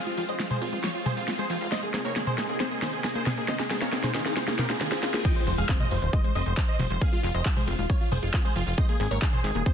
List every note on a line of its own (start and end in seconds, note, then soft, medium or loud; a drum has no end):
0.00 0.11 F3 medium
0.00 0.11 G#3 medium
0.00 0.11 C4 medium
0.00 0.11 F4 medium
0.00 riser medium
0.06 0.11 G#3 medium
0.06 0.13 F4 medium
0.06 0.14 F4 medium
0.06 closed hi-hat soft
0.17 0.25 F1 medium
0.17 0.33 F3 medium
0.17 0.25 F3 medium
0.17 0.33 G#3 medium
0.17 0.33 C4 medium
0.17 0.24 F4 medium
0.17 0.33 F4 medium
0.17 0.25 F4 medium
0.17 open hi-hat loud
0.28 0.36 F1 medium
0.28 0.36 C5 medium
0.28 0.36 D#5 medium
0.28 closed hi-hat medium
0.39 0.55 F3 medium
0.39 0.50 G3 medium
0.39 0.55 G#3 medium
0.39 0.55 C4 medium
0.39 0.55 F4 medium
0.39 0.47 F4 medium
0.39 snare medium
0.39 closed hi-hat medium
0.50 0.58 G#3 loud
0.50 0.58 G#4 medium
0.50 0.58 C5 loud
0.50 0.58 C5 medium
0.50 closed hi-hat medium
0.50 mid tom medium
0.61 0.69 F1 medium
0.61 0.77 F3 medium
0.61 0.77 G#3 medium
0.61 0.77 C4 medium
0.61 0.69 C4 medium
0.61 0.77 F4 medium
0.61 0.69 F4 medium
0.61 open hi-hat medium
0.72 0.80 D#1 medium
0.72 0.77 G#3 medium
0.72 0.80 F4 medium
0.72 closed hi-hat soft
0.83 0.91 F3 medium
0.83 0.91 G#3 medium
0.83 0.91 C4 medium
0.83 0.91 F4 medium
0.83 0.91 C#5 medium
0.83 snare medium
0.83 closed hi-hat medium
0.94 1.10 F3 medium
0.94 1.10 G#3 medium
0.94 1.10 C4 medium
0.94 1.10 F4 medium
0.94 1.02 F4 medium
0.94 closed hi-hat medium
1.06 1.13 F1 medium
1.06 1.16 G3 medium
1.06 1.13 G#4 medium
1.06 1.13 C5 medium
1.06 1.13 C5 loud
1.06 open hi-hat loud
1.06 mid tom medium
1.16 1.24 F1 medium
1.16 1.32 F3 medium
1.16 1.32 G#3 medium
1.16 1.24 G#3 loud
1.16 1.32 C4 medium
1.16 1.32 F4 medium
1.16 1.24 F4 medium
1.16 closed hi-hat medium
1.28 1.35 C4 medium
1.28 1.35 F4 medium
1.28 snare medium
1.28 closed hi-hat medium
1.38 1.54 F3 medium
1.38 1.54 G#3 medium
1.38 1.43 G#3 medium
1.38 1.54 C4 medium
1.38 1.54 F4 medium
1.38 1.46 G#4 medium
1.38 1.46 C5 medium
1.38 closed hi-hat soft
1.50 1.57 F1 medium
1.50 1.57 F3 medium
1.50 1.57 F4 medium
1.50 open hi-hat loud
1.61 1.68 F1 medium
1.61 1.69 F3 medium
1.61 1.68 G#3 medium
1.61 1.69 C4 medium
1.61 1.68 F4 medium
1.61 closed hi-hat medium
1.71 1.87 C3 medium
1.71 1.87 G#3 medium
1.71 1.82 G#3 medium
1.71 1.87 A#3 medium
1.71 1.87 D#4 medium
1.71 1.79 C5 medium
1.71 1.79 D#5 loud
1.71 snare medium
1.71 closed hi-hat medium
1.83 1.90 A#3 loud
1.83 1.90 G#4 medium
1.83 closed hi-hat soft
1.94 2.01 G#1 medium
1.94 2.09 C3 medium
1.94 2.09 G#3 medium
1.94 2.09 A#3 medium
1.94 2.01 C4 medium
1.94 2.09 D#4 medium
1.94 2.01 G#4 medium
1.94 snare medium
1.94 open hi-hat loud
2.05 2.13 G#1 medium
2.05 2.09 A#3 medium
2.05 2.12 A#4 medium
2.05 2.12 C#5 medium
2.05 closed hi-hat medium
2.16 2.31 C3 medium
2.16 2.23 D#3 medium
2.16 2.31 G#3 medium
2.16 2.31 A#3 medium
2.16 2.31 D#4 medium
2.16 2.23 G#4 medium
2.16 snare medium
2.16 closed hi-hat medium
2.27 2.34 G#4 medium
2.27 2.34 C5 medium
2.27 2.34 C5 loud
2.27 closed hi-hat medium
2.27 mid tom medium
2.38 2.46 G#1 medium
2.38 2.54 C3 medium
2.38 2.53 G#3 medium
2.38 2.49 G#3 medium
2.38 2.54 A#3 medium
2.38 2.54 D#4 medium
2.38 2.45 G#4 medium
2.38 snare medium
2.38 open hi-hat loud
2.49 2.57 D#1 medium
2.49 2.56 A#3 loud
2.49 2.56 G#4 medium
2.49 closed hi-hat soft
2.60 2.68 C3 medium
2.60 2.68 G#3 medium
2.60 2.68 A#3 medium
2.60 2.67 C4 medium
2.60 2.68 D#4 medium
2.60 2.67 G#4 medium
2.60 2.67 C5 medium
2.60 snare medium
2.60 closed hi-hat medium
2.71 2.87 C3 medium
2.71 2.87 G#3 medium
2.71 2.87 A#3 medium
2.71 2.75 A#3 medium
2.71 2.87 D#4 medium
2.71 2.78 G#4 medium
2.71 closed hi-hat medium
2.82 2.90 G#1 medium
2.82 2.89 D#3 medium
2.82 2.89 G#4 medium
2.82 2.89 C5 medium
2.82 snare medium
2.82 open hi-hat loud
2.93 3.01 G#1 medium
2.93 3.09 C3 loud
2.93 3.09 G#3 medium
2.93 3.09 A#3 medium
2.93 3.09 D#4 medium
2.93 3.00 G#4 medium
2.93 closed hi-hat medium
3.04 3.15 G#3 medium
3.04 3.11 G#4 medium
3.04 snare medium
3.04 closed hi-hat medium
3.15 3.31 C3 medium
3.15 3.31 G#3 medium
3.15 3.31 A#3 medium
3.15 3.22 A#3 loud
3.15 3.31 D#4 medium
3.15 3.22 G#4 medium
3.15 3.22 C5 medium
3.15 3.22 C5 loud
3.15 closed hi-hat soft
3.26 3.34 G#1 medium
3.26 3.34 C4 medium
3.26 3.33 G#4 medium
3.26 snare medium
3.26 open hi-hat loud
3.26 mid tom medium
3.37 3.45 G#1 medium
3.37 3.45 C3 medium
3.37 3.45 G#3 medium
3.37 3.45 A#3 medium
3.37 3.42 A#3 medium
3.37 3.45 D#4 medium
3.37 3.44 G#4 medium
3.37 3.45 G#4 medium
3.37 closed hi-hat medium
3.48 3.64 C3 loud
3.48 3.56 D#3 medium
3.48 3.64 G#3 loud
3.48 3.64 A#3 medium
3.48 3.64 F4 loud
3.48 3.55 C5 medium
3.48 3.55 D#5 loud
3.48 3.56 D#5 loud
3.48 snare loud
3.48 closed hi-hat medium
3.60 3.67 G#4 medium
3.60 snare medium
3.60 closed hi-hat soft
3.70 3.78 G#1 medium
3.70 3.86 C3 medium
3.70 3.86 G#3 medium
3.70 3.81 G#3 medium
3.70 3.86 A#3 medium
3.70 3.86 F4 medium
3.70 3.78 G#4 medium
3.70 snare medium
3.70 open hi-hat loud
3.82 3.89 G#1 medium
3.82 3.89 A#3 loud
3.82 3.89 A#4 medium
3.82 3.89 C#5 medium
3.82 snare medium
3.82 closed hi-hat soft
3.93 4.08 C3 medium
3.93 4.08 G#3 medium
3.93 4.08 A#3 medium
3.93 4.00 C4 medium
3.93 4.08 F4 medium
3.93 4.00 G#4 medium
3.93 snare medium
3.93 closed hi-hat medium
4.04 4.08 A#3 medium
4.04 4.11 G#4 medium
4.04 4.11 C5 medium
4.04 snare medium
4.04 closed hi-hat medium
4.04 mid tom medium
4.15 4.22 G#1 medium
4.15 4.30 C3 medium
4.15 4.22 D#3 medium
4.15 4.30 G#3 medium
4.15 4.30 A#3 medium
4.15 4.30 F4 medium
4.15 4.22 G#4 medium
4.15 snare loud
4.15 open hi-hat loud
4.26 4.33 D#1 medium
4.26 4.33 G#4 medium
4.26 snare medium
4.26 closed hi-hat medium
4.36 4.44 C3 medium
4.36 4.44 G#3 medium
4.36 4.47 G#3 medium
4.36 4.44 A#3 medium
4.36 4.44 F4 medium
4.36 4.44 G#4 medium
4.36 4.44 C5 medium
4.36 snare loud
4.36 closed hi-hat medium
4.36 swell medium
4.47 4.63 C3 medium
4.47 4.63 G#3 medium
4.47 4.63 A#3 medium
4.47 4.55 A#3 loud
4.47 4.63 F4 medium
4.47 4.55 G#4 medium
4.47 snare medium
4.47 closed hi-hat soft
4.59 4.66 G#1 medium
4.59 4.66 C4 medium
4.59 4.66 G4 medium
4.59 4.66 A#4 medium
4.59 snare loud
4.59 open hi-hat loud
4.59 mid tom medium
4.69 4.77 G#1 medium
4.69 4.85 C3 medium
4.69 4.85 G#3 medium
4.69 4.85 A#3 medium
4.69 4.74 A#3 medium
4.69 4.85 F4 loud
4.69 4.77 G#4 medium
4.69 snare medium
4.69 closed hi-hat medium
4.81 4.88 D#3 medium
4.81 4.88 G#4 medium
4.81 snare loud
4.81 closed hi-hat medium
4.92 5.07 C3 medium
4.92 5.07 G#3 medium
4.92 5.07 A#3 medium
4.92 4.99 C4 medium
4.92 5.07 F4 medium
4.92 4.99 G#4 loud
4.92 4.99 G#4 medium
4.92 snare loud
4.92 closed hi-hat soft
5.03 5.13 G#3 medium
5.03 5.10 G#4 medium
5.03 snare loud
5.03 open hi-hat medium
5.14 5.22 C3 medium
5.14 5.22 G#3 medium
5.14 5.22 A#3 medium
5.14 5.21 A#3 loud
5.14 5.22 F4 medium
5.14 5.21 G#4 medium
5.14 snare medium
5.14 closed hi-hat medium
5.25 5.32 F3 medium
5.25 5.32 D#5 medium
5.25 5.32 G5 loud
5.25 5.32 G5 medium
5.25 kick loud
5.25 closed hi-hat loud
5.25 crash loud
5.25 impact medium
5.36 5.43 C5 medium
5.36 closed hi-hat medium
5.47 5.54 F1 medium
5.47 5.58 G3 medium
5.47 5.54 C5 medium
5.47 open hi-hat loud
5.58 5.65 F1 medium
5.58 5.65 G#3 loud
5.58 5.65 G#4 medium
5.58 5.65 F5 medium
5.58 5.65 F5 loud
5.58 closed hi-hat medium
5.69 5.76 C4 medium
5.69 5.76 C5 medium
5.69 kick loud
5.69 clap loud
5.69 closed hi-hat loud
5.80 5.84 G#3 medium
5.80 5.87 C5 medium
5.80 5.87 D#5 medium
5.80 5.87 D#5 loud
5.80 closed hi-hat medium
5.80 mid tom medium
5.91 5.99 F1 medium
5.91 5.98 F3 medium
5.91 5.98 C5 medium
5.91 open hi-hat loud
6.02 6.10 D#1 medium
6.02 6.09 C5 medium
6.02 closed hi-hat medium
6.13 6.24 G3 medium
6.13 6.20 C5 medium
6.13 6.20 D#5 medium
6.13 kick loud
6.13 closed hi-hat loud
6.24 6.31 G#3 loud
6.24 6.31 C5 medium
6.24 closed hi-hat medium
6.35 6.43 F1 medium
6.35 6.42 C4 medium
6.35 6.42 C5 medium
6.35 6.42 D#5 medium
6.35 6.42 D#5 loud
6.35 open hi-hat loud
6.46 6.54 F1 medium
6.46 6.51 G#3 medium
6.46 6.53 C5 medium
6.46 closed hi-hat medium
6.57 6.64 F3 medium
6.57 6.64 C5 medium
6.57 kick loud
6.57 clap loud
6.57 closed hi-hat medium
6.68 6.75 C5 medium
6.68 6.75 D#5 loud
6.68 closed hi-hat medium
6.79 6.87 F1 medium
6.79 6.90 G3 medium
6.79 6.86 C5 medium
6.79 open hi-hat loud
6.79 mid tom medium
6.90 6.98 F1 medium
6.90 6.97 G#3 loud
6.90 6.97 C5 medium
6.90 closed hi-hat medium
7.01 7.09 C4 medium
7.01 7.08 G#4 medium
7.01 7.08 F5 loud
7.01 7.09 F5 loud
7.01 kick loud
7.01 closed hi-hat loud
7.12 7.17 G#3 medium
7.12 7.19 F4 medium
7.12 7.20 F4 medium
7.12 closed hi-hat medium
7.23 7.31 F1 medium
7.23 7.31 F3 medium
7.23 7.30 F4 medium
7.23 open hi-hat loud
7.34 7.42 F1 medium
7.34 7.42 C5 medium
7.34 7.42 D#5 medium
7.34 closed hi-hat medium
7.45 7.56 G3 medium
7.45 7.52 F4 medium
7.45 7.53 F4 medium
7.45 kick loud
7.45 clap loud
7.45 closed hi-hat loud
7.56 7.64 G#3 loud
7.56 7.63 G#4 medium
7.56 7.63 C5 medium
7.56 7.64 C5 loud
7.56 closed hi-hat medium
7.56 mid tom medium
7.67 7.75 F1 medium
7.67 7.75 C4 medium
7.67 7.74 F4 medium
7.67 7.75 F4 medium
7.67 open hi-hat loud
7.79 7.86 D#1 medium
7.79 7.83 G#3 medium
7.79 7.86 F4 medium
7.79 closed hi-hat soft
7.90 7.97 F3 medium
7.90 7.97 F4 medium
7.90 7.97 C#5 medium
7.90 kick loud
7.90 closed hi-hat medium
8.01 8.08 F4 medium
8.01 closed hi-hat medium
8.12 8.19 F1 medium
8.12 8.22 G3 medium
8.12 8.19 G#4 medium
8.12 8.19 C5 medium
8.12 8.19 C5 loud
8.12 open hi-hat loud
8.12 mid tom medium
8.23 8.30 F1 medium
8.23 8.30 G#3 loud
8.23 8.30 F4 medium
8.23 closed hi-hat medium
8.34 8.41 C4 medium
8.34 8.41 F4 medium
8.34 kick loud
8.34 clap loud
8.34 closed hi-hat medium
8.45 8.49 G#3 medium
8.45 8.52 G#4 medium
8.45 8.52 C5 loud
8.45 closed hi-hat medium
8.56 8.63 F1 medium
8.56 8.63 F3 medium
8.56 8.63 F4 medium
8.56 open hi-hat loud
8.67 8.74 F1 medium
8.67 8.74 F4 medium
8.67 closed hi-hat medium
8.78 8.88 G#3 medium
8.78 8.85 C5 medium
8.78 8.85 D#5 loud
8.78 kick loud
8.78 closed hi-hat medium
8.89 8.96 A#3 loud
8.89 8.96 G#4 medium
8.89 closed hi-hat medium
9.00 9.07 G#1 medium
9.00 9.07 C4 medium
9.00 9.07 G#4 medium
9.00 open hi-hat loud
9.11 9.18 G#1 medium
9.11 9.15 A#3 medium
9.11 9.18 A#4 medium
9.11 9.18 C#5 medium
9.11 closed hi-hat medium
9.22 9.29 D#3 medium
9.22 9.29 G#4 medium
9.22 kick loud
9.22 clap loud
9.22 closed hi-hat medium
9.33 9.40 G#4 medium
9.33 9.40 C5 loud
9.33 9.40 C5 medium
9.33 closed hi-hat soft
9.33 mid tom medium
9.44 9.51 G#1 medium
9.44 9.54 G#3 medium
9.44 9.51 G#4 medium
9.44 open hi-hat loud
9.55 9.62 D#1 medium
9.55 9.62 A#3 medium
9.55 9.62 G#4 medium
9.55 closed hi-hat soft
9.66 9.73 C4 medium
9.66 9.73 G#4 medium
9.66 9.73 C5 medium
9.66 kick loud
9.66 closed hi-hat loud